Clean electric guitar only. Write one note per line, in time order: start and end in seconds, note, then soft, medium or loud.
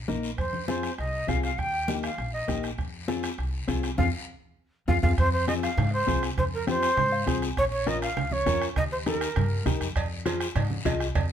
0.08 0.29 A#3 medium
0.08 0.29 D#4 medium
0.08 0.30 A#4 medium
0.68 0.89 C4 medium
0.68 0.90 F4 medium
0.68 0.90 G#4 medium
1.28 1.49 C4 medium
1.28 1.50 F4 medium
1.28 1.50 G#4 medium
1.88 2.09 A#3 medium
1.88 2.09 D#4 medium
1.88 2.10 G4 medium
2.48 2.69 A#3 medium
2.48 2.69 D#4 medium
2.48 2.70 G4 medium
3.08 3.29 C4 medium
3.08 3.29 F4 medium
3.08 3.30 G#4 medium
3.68 3.89 C4 medium
3.68 3.89 F4 medium
3.68 3.90 G#4 medium
3.98 4.08 C4 medium
3.98 4.08 F4 medium
3.98 4.08 G#4 medium
4.88 4.98 C4 medium
4.88 4.98 F4 medium
4.88 4.98 G#4 medium
5.03 5.13 C4 medium
5.03 5.13 F4 medium
5.03 5.13 G#4 loud
5.48 5.69 C4 medium
5.48 5.69 F4 medium
5.48 5.69 G#4 medium
6.07 6.28 C4 medium
6.07 6.29 F4 medium
6.07 6.29 G#4 medium
6.67 6.88 C4 medium
6.67 6.89 F4 medium
6.67 6.89 G4 medium
7.12 7.26 F5 medium
7.27 7.48 C4 medium
7.27 7.48 F4 medium
7.27 7.49 G#4 loud
7.27 7.55 G#5 medium
7.87 8.08 C#4 medium
7.87 8.08 F4 medium
7.87 8.08 A#4 medium
8.46 8.67 C#4 medium
8.46 8.68 F4 medium
8.46 8.68 A#4 medium
9.06 9.27 D#4 medium
9.06 9.28 G4 medium
9.06 9.28 A#4 medium
9.66 9.87 D#4 medium
9.66 9.87 G4 medium
9.66 9.87 A#4 medium
10.26 10.47 F4 loud
10.26 10.47 G#4 medium
10.26 10.47 C5 loud
10.85 11.06 F4 medium
10.85 11.06 G#4 medium
10.85 11.07 D#5 medium